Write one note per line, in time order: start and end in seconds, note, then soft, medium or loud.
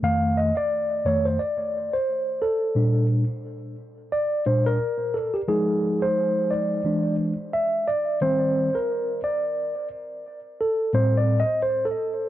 0.02 0.50 F2 medium
0.02 0.50 D#3 medium
0.02 0.51 A3 medium
0.02 0.39 F5 loud
0.38 0.56 D#5 medium
0.57 1.07 D5 medium
1.05 1.36 F2 soft
1.05 1.36 D#3 soft
1.05 1.36 A3 soft
1.05 1.26 C#5 medium
1.25 1.40 C5 medium
1.39 1.95 D5 medium
1.93 2.43 C5 medium
2.42 3.06 A4 medium
2.75 3.23 A#2 medium
2.75 3.23 G3 soft
2.75 3.23 D4 medium
4.12 4.44 D5 medium
4.46 4.76 A#2 soft
4.46 4.77 G3 soft
4.46 4.77 D4 soft
4.46 4.67 C5 medium
4.66 5.16 A#4 loud
5.14 5.35 A4 medium
5.34 5.40 G4 medium
5.48 6.80 F3 medium
5.48 6.81 G#3 medium
5.48 6.81 D#4 medium
5.48 6.04 G#4 medium
6.02 6.52 C5 medium
6.51 7.15 D5 medium
6.84 7.32 E3 medium
6.84 7.32 G#3 soft
6.84 7.33 D4 medium
7.53 7.88 E5 loud
7.88 8.19 D5 loud
8.21 8.68 D#3 medium
8.21 8.69 G3 medium
8.21 8.69 C4 medium
8.21 8.77 C5 loud
8.75 9.20 A#4 medium
9.24 9.88 D5 medium
10.61 10.92 A4 medium
10.93 11.41 A2 medium
10.93 11.41 G3 medium
10.93 11.41 C4 medium
10.93 11.18 C5 loud
11.17 11.38 D5 loud
11.40 11.61 D#5 loud
11.62 11.86 C5 loud
11.85 12.29 A4 medium